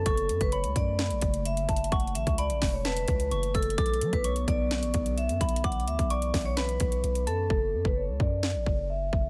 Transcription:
Already playing: ambient pad F#3
0.06 808-style bass F#1, ambient pad C#3 A3, vibraphone A4, synth bell C#6, kick, closed hi-hat
0.17 closed hi-hat
0.29 808-style bass F#2, closed hi-hat
0.41 808-style bass F#1, vibraphone B4, kick, closed hi-hat
0.52 vibraphone C#5, synth bell B5, closed hi-hat
0.64 808-style bass C#2, closed hi-hat
0.76 808-style bass F#2, vibraphone D5, kick, closed hi-hat
0.99 snare, closed hi-hat
1.10 808-style bass A1, closed hi-hat
1.21 808-style bass F#1, kick, closed hi-hat
1.34 closed hi-hat
1.45 vibraphone E5, closed hi-hat
1.57 closed hi-hat
1.69 808-style bass F#1, synth bell A5, kick, closed hi-hat
1.76 closed hi-hat
1.84 closed hi-hat
1.92 808-style bass F#1, ambient pad E3, vibraphone F#5, synth bell C#6, kick, closed hi-hat
2.00 closed hi-hat
2.07 closed hi-hat
2.15 808-style bass A1, vibraphone E5, closed hi-hat
2.27 808-style bass C#2, kick, closed hi-hat
2.38 vibraphone D5, synth bell B5, closed hi-hat
2.50 808-style bass A1, closed hi-hat
2.62 808-style bass E1, kick, snare, open hi-hat
2.73 vibraphone C#5
2.85 vibraphone B4, synth bell A5, snare, closed hi-hat
2.97 closed hi-hat
3.08 808-style bass C#2, kick, closed hi-hat
3.20 closed hi-hat
3.31 808-style bass F#1, synth bell C#6, closed hi-hat
3.43 closed hi-hat
3.54 808-style bass F#1, vibraphone A4, synth bell E6, kick, closed hi-hat
3.62 closed hi-hat
3.70 closed hi-hat
3.78 808-style bass B1, ambient pad D3 F#3 B3, vibraphone A4, synth bell D6, kick, closed hi-hat
3.86 closed hi-hat
3.94 closed hi-hat
4.01 808-style bass F#3, closed hi-hat
4.13 808-style bass B1, vibraphone B4, kick, closed hi-hat
4.24 vibraphone C#5, synth bell C#6, closed hi-hat
4.36 closed hi-hat
4.48 808-style bass B1, vibraphone D5, kick, closed hi-hat
4.71 snare, closed hi-hat
4.83 808-style bass A1, closed hi-hat
4.94 808-style bass B1, kick, closed hi-hat
5.06 closed hi-hat
5.18 vibraphone E5, closed hi-hat
5.29 808-style bass F#2, closed hi-hat
5.41 808-style bass B1, synth bell B5, kick, closed hi-hat
5.49 closed hi-hat
5.56 closed hi-hat
5.64 808-style bass B1, ambient pad E3, vibraphone F#5, synth bell D6, kick, closed hi-hat
5.72 closed hi-hat
5.80 closed hi-hat
5.87 808-style bass D2, vibraphone E5, closed hi-hat
5.99 808-style bass B1, kick, closed hi-hat
6.10 vibraphone D5, synth bell C#6, closed hi-hat
6.22 closed hi-hat
6.34 808-style bass B1, kick, snare, open hi-hat
6.45 vibraphone C#5
6.57 vibraphone B4, synth bell B5, snare, closed hi-hat
6.69 closed hi-hat
6.80 808-style bass B1, kick, closed hi-hat
6.92 closed hi-hat
7.04 808-style bass B1, closed hi-hat
7.15 closed hi-hat
7.27 808-style bass F#2, vibraphone A4, synth bell A5, closed hi-hat
7.50 808-style bass F#1, vibraphone A4, kick
7.73 808-style bass F#2
7.85 808-style bass F#1, vibraphone B4, kick
7.96 vibraphone C#5
8.08 808-style bass C#2
8.20 808-style bass F#2, vibraphone D5, kick
8.43 snare
8.55 808-style bass A1
8.66 808-style bass F#1, kick
8.90 vibraphone E5
9.13 808-style bass F#1, kick

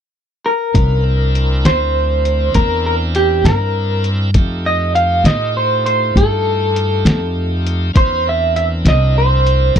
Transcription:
0.46 clean electric guitar A#4
0.73 upright bass C2, tonewheel organ C#4 D#4 F4 B4, kick, closed hi-hat
1.03 tonewheel organ C4 D4 E4 A#4
1.35 closed hi-hat
1.65 upright bass D2, clean electric guitar C5, snare, closed hi-hat
2.25 closed hi-hat
2.54 upright bass E2, clean electric guitar A#4, kick, closed hi-hat
2.86 clean electric guitar A#4
3.15 clean electric guitar G4, closed hi-hat
3.44 upright bass G2, clean electric guitar A#4, snare, closed hi-hat
4.04 closed hi-hat
4.34 upright bass F2, tonewheel organ A3 D#4 F4 G4, kick, closed hi-hat
4.66 clean electric guitar D#5
4.95 clean electric guitar F5, closed hi-hat
5.24 upright bass A2, clean electric guitar D#5, snare, closed hi-hat
5.57 clean electric guitar C5
5.86 clean electric guitar C5, closed hi-hat
6.16 upright bass G2, clean electric guitar A4, kick, closed hi-hat
6.76 closed hi-hat
7.05 upright bass F2, snare, closed hi-hat
7.67 closed hi-hat
7.93 upright bass E2, tonewheel organ C#4 D#4 F4 B4, clean electric guitar C5, kick, closed hi-hat
8.25 tonewheel organ C4 D4 E4 A#4
8.29 clean electric guitar E5
8.56 clean electric guitar E5, closed hi-hat
8.85 upright bass C2, clean electric guitar D#5, snare, closed hi-hat
9.18 clean electric guitar C5
9.47 closed hi-hat
9.76 upright bass A#1, kick, closed hi-hat

